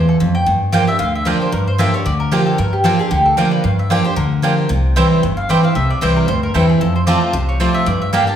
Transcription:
Already playing: E2
0.09 A4
0.20 F2
0.35 G5
0.46 G2
0.72 F3 A#3 D4 F4 G4 D5 G5
0.87 D4 G4 E5
0.99 D2 D3 F5
1.15 E5
1.25 F3 A#3 D4 F4 G4 D5 G5
1.42 C5
1.52 G2 A#4
1.67 C5
1.78 F3 A#3 D4 F4 G4 D5 E5 G5
1.94 D4 G4 C#5
2.06 D2 D3 D5
2.20 A#4
2.32 F3 A#3 D4 F4 G4 D5 G5
2.46 A4
2.58 G2 A#4
2.73 G4
2.84 F3 A#3 D4 F4 G4 A4 D5 G5
2.99 D4 G4 G#4
3.11 D2 D3 G4
3.25 A4
3.37 F3 A#3 D4 F4 G4 A#4 D5 G5
3.51 B4
3.64 G2 F5
3.79 E5
3.90 F3 A#3 D4 F4 G4 D5 G5
4.04 D4 G4 C5
4.16 D2 D3 A#4
4.42 F3 A#3 D4 F4 G4 D5 G5
4.69 C2 C3
4.96 E3 G3 C4 E4 C5 G5
5.23 G1 G2
5.37 F5
5.49 E3 G3 C4 E4 C5 D5 G5
5.63 C4 E4 F5
5.75 C2 C3 E5
5.90 D5
6.01 C2 E3 G3 C4 E4 C5 G5
6.16 A#4
6.28 D2 G2 C5
6.43 A#4
6.54 E2 E3 G3 C4 E4 A4 C5 G5
6.69 G#4
6.81 F2 A4
6.96 C5
7.07 F3 A3 C4 F4 C5 D5 A5
7.21 B4
7.33 C2 C3 C5
7.49 C#5
7.60 F3 A3 C4 F4 C5 D5 A5
7.74 E5
7.86 G2 D5
8.02 E5
8.13 G3 A#3 D4 G4 D5 F5 G5
8.27 D4 G4 A5

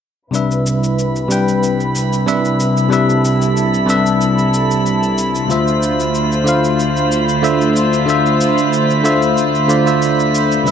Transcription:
0.31 C2 C3 G3 D4 E4 B4 B5, cabasa
0.35 E5
0.51 cabasa
0.66 cabasa
0.84 cabasa
0.99 cabasa
1.16 cabasa
1.28 C3 G3 D4 B4, cabasa
1.32 G5
1.48 cabasa
1.63 cabasa
1.80 cabasa
1.95 cabasa
2.13 cabasa
2.26 C3 G3 D4 B4 E5, cabasa
2.45 cabasa
2.60 cabasa
2.77 cabasa
2.89 C3 G3 D4 A4 B4, cabasa
2.93 E5
3.10 cabasa
3.25 cabasa
3.42 cabasa
3.57 cabasa
3.74 cabasa
3.86 C3 G3 D4 B4, cabasa
3.90 E5
4.06 cabasa
4.21 cabasa
4.38 cabasa
4.54 cabasa
4.71 cabasa
4.86 cabasa
5.03 cabasa
5.18 cabasa
5.35 cabasa
5.47 D2 D3 A3 F4 C5, cabasa
5.52 E5
5.67 cabasa
5.83 cabasa
6.00 cabasa
6.15 cabasa
6.32 cabasa
6.44 D3 A3 F4 C5, cabasa
6.49 F5
6.64 cabasa
6.80 cabasa
6.97 cabasa
7.12 cabasa
7.29 cabasa
7.42 D3 A3 F4 C5 E5, cabasa
7.61 cabasa
7.76 cabasa
7.93 cabasa
8.06 D3 A3 F4 C5, cabasa
8.10 E5
8.26 cabasa
8.41 cabasa
8.58 cabasa
8.73 cabasa
8.90 cabasa
9.04 D3 A3 F4 C5 E5, cabasa
9.22 cabasa
9.38 cabasa
9.55 cabasa
9.68 D3 A3 F4 C5 D5, cabasa
9.85 D3 A3 F4 C5 E5, cabasa
10.02 cabasa
10.20 cabasa
10.35 cabasa
10.52 cabasa
10.64 C2 C3 G3 D4 E4 B4, cabasa
10.68 E5

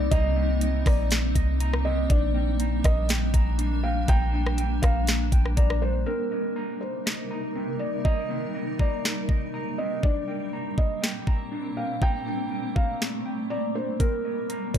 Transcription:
Already playing: C3 G3 A#3 C4 D#4 D#5 A#5
0.11 C2 D#5 A#5, kick, closed hi-hat
0.36 C4
0.61 D#5, closed hi-hat
0.86 A#1 D5 A#5, kick, cross-stick, open hi-hat
1.11 snare, closed hi-hat
1.35 C2 D#5, kick, closed hi-hat
1.60 A#5, closed hi-hat
1.73 cross-stick
1.85 C4 D#5
2.09 A#1 G3 D4 D5, kick, closed hi-hat
2.34 G5
2.60 A#5, closed hi-hat
2.84 A#1 D#5, kick, cross-stick, closed hi-hat
3.09 G5, snare, closed hi-hat
3.34 A#1 A#5, kick, closed hi-hat
3.58 D4, closed hi-hat
3.83 F5 G5
4.08 A#1 G5 A#5, kick, closed hi-hat
4.33 D4
4.46 cross-stick
4.58 G5, closed hi-hat
4.82 A#1 F5 A#5, kick, cross-stick, closed hi-hat
5.07 snare, closed hi-hat
5.32 A#1 G5, kick, closed hi-hat
5.46 cross-stick
5.57 A#1 D5 A#5, kick, closed hi-hat
5.70 cross-stick
5.82 D4 C5
6.06 C3 G3 A#3 C4 D#4 A#4
6.32 D#5
6.56 A#5
6.81 C5
7.06 D#5, snare
7.31 A#5
7.55 C4
7.79 D5 D#5
8.05 D#5 A#5, kick
8.30 C4
8.55 D#5
8.79 D5 A#5, kick
9.05 snare
9.29 D#5, kick
9.54 A#5
9.78 C4 D#5
10.03 A#2 C4 D4 D5, kick
10.28 G5
10.53 A#5
10.78 D#5, kick
11.02 G5, snare
11.27 A#5, kick
11.52 D4
11.77 F5 G5
12.02 A3 G5 A#5, kick
12.26 D4
12.51 G5
12.76 F5 A#5, kick
13.02 snare
13.25 G5
13.50 D5 A#5
13.75 D4 C5
14.00 C3 C4 D#4 A#4, kick, closed hi-hat
14.25 D#5
14.50 A#5, closed hi-hat
14.74 C5, kick, closed hi-hat

